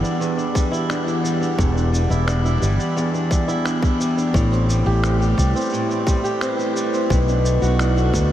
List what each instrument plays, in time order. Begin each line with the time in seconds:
Already playing: steel-string acoustic guitar E2 G3 E4, ambient pad E3 B3 G4 F#5
0.03 steel-string acoustic guitar D4, shaker
0.20 steel-string acoustic guitar E2, shaker
0.37 steel-string acoustic guitar D4, shaker
0.54 steel-string acoustic guitar G3, kick, shaker
0.72 steel-string acoustic guitar E4, shaker
0.90 steel-string acoustic guitar D4, finger snap, shaker
1.07 steel-string acoustic guitar E4, shaker
1.23 steel-string acoustic guitar G3, shaker
1.41 steel-string acoustic guitar D4, shaker
1.58 fingered electric bass E1, steel-string acoustic guitar E2, kick, shaker
1.75 steel-string acoustic guitar D4, shaker
1.92 steel-string acoustic guitar G3, shaker
2.10 fingered electric bass E1, steel-string acoustic guitar E4, shaker
2.27 steel-string acoustic guitar D4, finger snap, shaker
2.45 steel-string acoustic guitar E4, shaker
2.62 fingered electric bass G1, steel-string acoustic guitar G3, shaker
2.79 steel-string acoustic guitar D4, shaker
2.96 steel-string acoustic guitar E2, shaker
3.14 steel-string acoustic guitar D4, shaker
3.31 steel-string acoustic guitar G3, kick, shaker
3.48 steel-string acoustic guitar E4, shaker
3.65 steel-string acoustic guitar D4, finger snap, shaker
3.82 steel-string acoustic guitar E4, kick, shaker
4.00 steel-string acoustic guitar G3, shaker
4.17 steel-string acoustic guitar D4, shaker
4.34 fingered electric bass A1, steel-string acoustic guitar A2, ambient pad A3, kick, shaker
4.51 steel-string acoustic guitar C4, ambient pad B4, shaker
4.69 steel-string acoustic guitar G3, shaker
4.84 fingered electric bass A1, ambient pad E4, steel-string acoustic guitar G4
5.03 steel-string acoustic guitar C4, finger snap, shaker
5.20 steel-string acoustic guitar G4, shaker
5.38 fingered electric bass C2, steel-string acoustic guitar G3, kick, shaker
5.55 steel-string acoustic guitar C4, ambient pad C5, shaker
5.60 shaker
5.65 shaker
5.69 steel-string acoustic guitar A2, shaker
5.74 shaker
5.89 steel-string acoustic guitar C4, shaker
6.07 steel-string acoustic guitar G3, kick, shaker
6.24 steel-string acoustic guitar G4, shaker
6.41 steel-string acoustic guitar C4, finger snap, shaker
6.59 steel-string acoustic guitar G4, shaker
6.76 steel-string acoustic guitar G3, shaker
6.93 steel-string acoustic guitar C4, shaker
7.10 fingered electric bass B1, steel-string acoustic guitar B2, ambient pad B3, kick, shaker
7.28 steel-string acoustic guitar D4, shaker
7.45 steel-string acoustic guitar A3, ambient pad A4, shaker
7.62 fingered electric bass B1, steel-string acoustic guitar F#4, shaker
7.79 steel-string acoustic guitar D4, finger snap, shaker
7.97 steel-string acoustic guitar F#4, shaker
8.14 fingered electric bass D2, steel-string acoustic guitar A3, kick, shaker